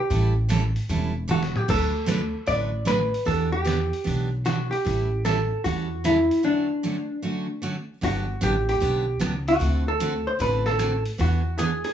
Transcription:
Already playing: hollow-body jazz guitar G4
0.10 upright bass A1, steel-string acoustic guitar E3 G3 C#4 E4 A4, kick, open hi-hat
0.49 steel-string acoustic guitar E3 G3 C#4 E4 A4, snare, closed hi-hat
0.76 open hi-hat
0.89 upright bass E1, steel-string acoustic guitar E3 G3 C#4 E4 A4, kick, open hi-hat
1.28 steel-string acoustic guitar E3 G3 C#4 E4 A4, hollow-body jazz guitar F#4, high tom
1.43 snare
1.56 hollow-body jazz guitar G4, mid tom
1.68 upright bass D2, steel-string acoustic guitar D3 F#3 A3 D4 F#4 B4, hollow-body jazz guitar A4, kick, crash
2.06 steel-string acoustic guitar D3 F#3 A3 D4 F#4 B4, snare, closed hi-hat
2.46 upright bass A1, steel-string acoustic guitar D3 F#3 A3 D4 F#4 B4, hollow-body jazz guitar D5, kick, open hi-hat
2.85 steel-string acoustic guitar D3 F#3 A3 D4 F#4 B4, hollow-body jazz guitar B4, snare, closed hi-hat
3.14 open hi-hat
3.25 upright bass E2, steel-string acoustic guitar E3 B3 D4 G4, hollow-body jazz guitar A4, kick, open hi-hat
3.52 hollow-body jazz guitar G4
3.64 steel-string acoustic guitar E3 B3 D4 G4, snare, closed hi-hat
3.93 open hi-hat
4.04 upright bass B1, steel-string acoustic guitar E3 B3 D4 G4, kick, open hi-hat
4.45 steel-string acoustic guitar E3 B3 D4 G4, hollow-body jazz guitar F#4, snare, closed hi-hat
4.71 hollow-body jazz guitar G4, open hi-hat
4.85 upright bass A1, steel-string acoustic guitar E3 G3 C#4 E4 A4, kick, open hi-hat
5.25 steel-string acoustic guitar E3 G3 C#4 E4 A4, hollow-body jazz guitar A4, snare, closed hi-hat
5.64 upright bass E2, steel-string acoustic guitar E3 G3 C#4 E4 A4, hollow-body jazz guitar F#4, kick, open hi-hat
6.04 steel-string acoustic guitar E3 G3 C#4 E4 A4, hollow-body jazz guitar E4, snare, closed hi-hat
6.31 open hi-hat
6.43 steel-string acoustic guitar D3 F#3 A3 C#4 F#4, hollow-body jazz guitar D4
6.83 steel-string acoustic guitar D3 F#3 A3 C#4 F#4
7.22 steel-string acoustic guitar D3 F#3 A3 C#4 F#4
7.62 steel-string acoustic guitar D3 F#3 A3 C#4 F#4
8.01 upright bass G1, steel-string acoustic guitar D3 F#3 B3 D4 G4, hollow-body jazz guitar F#4, kick, open hi-hat
8.41 upright bass A1, steel-string acoustic guitar D3 F#3 B3 D4 G4, hollow-body jazz guitar G4, closed hi-hat
8.69 hollow-body jazz guitar G4, open hi-hat
8.80 upright bass B1, steel-string acoustic guitar D3 F#3 B3 D4 G4, kick, open hi-hat
9.20 upright bass C#2, steel-string acoustic guitar D3 F#3 B3 D4 G4, cross-stick, closed hi-hat
9.48 hollow-body jazz guitar F#4, open hi-hat
9.59 upright bass D2, steel-string acoustic guitar D3 A3 C4 F#4 A4, kick, open hi-hat
9.88 hollow-body jazz guitar A4
10.00 steel-string acoustic guitar D3 A3 C4 F#4 A4, closed hi-hat
10.27 hollow-body jazz guitar C5
10.39 upright bass A1, steel-string acoustic guitar D3 A3 C4 F#4 A4, hollow-body jazz guitar B4, kick, open hi-hat
10.66 hollow-body jazz guitar A4, snare
10.79 steel-string acoustic guitar D3 A3 C4 F#4 A4, cross-stick, closed hi-hat
11.06 open hi-hat
11.18 upright bass E2, steel-string acoustic guitar E3 B3 D4 G#4, hollow-body jazz guitar F#4, kick, open hi-hat
11.58 steel-string acoustic guitar E3 B3 D4 G#4, hollow-body jazz guitar G#4, closed hi-hat
11.84 hollow-body jazz guitar G#4, open hi-hat

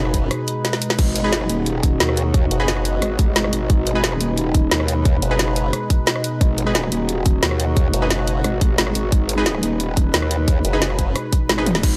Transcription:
Already playing: wobble bass F#1, analog synth pad B2 G#3 D#4 B4, synth stab D#4 G#4 B4
0.05 cross-stick
0.14 kick, closed hi-hat
0.31 cross-stick, closed hi-hat
0.48 closed hi-hat
0.65 snare, closed hi-hat
0.73 snare
0.82 closed hi-hat
0.90 snare
0.99 wobble bass G#1, analog synth pad F#4, kick, closed hi-hat, crash
1.16 closed hi-hat
1.24 synth stab D#4 G#4 B4
1.33 snare, closed hi-hat
1.41 cross-stick
1.49 wobble bass D#1, closed hi-hat
1.66 closed hi-hat
1.83 kick, closed hi-hat
2.00 wobble bass D#2, snare, closed hi-hat
2.09 cross-stick
2.17 closed hi-hat
2.34 kick, closed hi-hat
2.51 wobble bass F#1, closed hi-hat
2.60 synth stab D#4 G#4 B4
2.68 snare, closed hi-hat
2.77 cross-stick
2.85 closed hi-hat
3.02 wobble bass G#1, cross-stick, closed hi-hat
3.19 wobble bass A1, kick, closed hi-hat
3.36 wobble bass G#1, snare, closed hi-hat
3.44 cross-stick
3.53 wobble bass G#1, closed hi-hat
3.70 wobble bass G#1, analog synth pad B4, kick, closed hi-hat
3.87 closed hi-hat
3.95 synth stab D#4 G#4 B4
4.04 snare, closed hi-hat
4.12 cross-stick
4.21 wobble bass D#1, closed hi-hat
4.38 closed hi-hat
4.55 kick, closed hi-hat
4.71 wobble bass D#2, snare, closed hi-hat
4.80 cross-stick
4.88 closed hi-hat
5.05 kick, closed hi-hat
5.22 wobble bass F#1, closed hi-hat
5.31 synth stab D#4 G#4 B4
5.39 snare, closed hi-hat
5.48 cross-stick
5.56 closed hi-hat
5.73 cross-stick, closed hi-hat
5.90 kick, closed hi-hat
6.07 snare, closed hi-hat
6.16 cross-stick
6.24 closed hi-hat
6.41 wobble bass G#1, analog synth pad F#4, kick, closed hi-hat
6.58 closed hi-hat
6.66 synth stab D#4 G#4 B4
6.75 snare, closed hi-hat
6.83 cross-stick
6.92 wobble bass D#1, closed hi-hat
7.09 closed hi-hat
7.26 kick, closed hi-hat
7.43 wobble bass D#2, snare, closed hi-hat
7.51 cross-stick
7.60 closed hi-hat
7.77 kick, closed hi-hat
7.94 wobble bass F#1, closed hi-hat
8.02 synth stab D#4 G#4 B4
8.10 snare, closed hi-hat
8.19 cross-stick
8.27 closed hi-hat
8.44 wobble bass G#1, cross-stick, closed hi-hat
8.61 wobble bass A1, kick, closed hi-hat
8.78 wobble bass G#1, snare, closed hi-hat
8.87 cross-stick
8.95 wobble bass G#1, closed hi-hat
9.12 wobble bass G#1, analog synth pad B4, kick, closed hi-hat
9.29 closed hi-hat
9.38 synth stab D#4 G#4 B4
9.46 snare, closed hi-hat
9.55 cross-stick
9.63 wobble bass D#1, closed hi-hat
9.80 closed hi-hat
9.97 kick, closed hi-hat
10.14 wobble bass D#2, snare, closed hi-hat
10.22 cross-stick
10.31 closed hi-hat
10.48 kick, closed hi-hat
10.65 wobble bass F#1, closed hi-hat
10.73 synth stab D#4 G#4 B4
10.82 snare, closed hi-hat
10.90 cross-stick
10.99 kick, closed hi-hat
11.16 cross-stick, closed hi-hat
11.33 kick, closed hi-hat
11.49 wobble bass G#1, snare, closed hi-hat
11.58 synth stab D#4 G#4 B4, cross-stick
11.66 closed hi-hat, high tom
11.75 snare
11.83 wobble bass G#1, analog synth pad B2 G#3 D#4 G#4, kick, closed hi-hat, crash

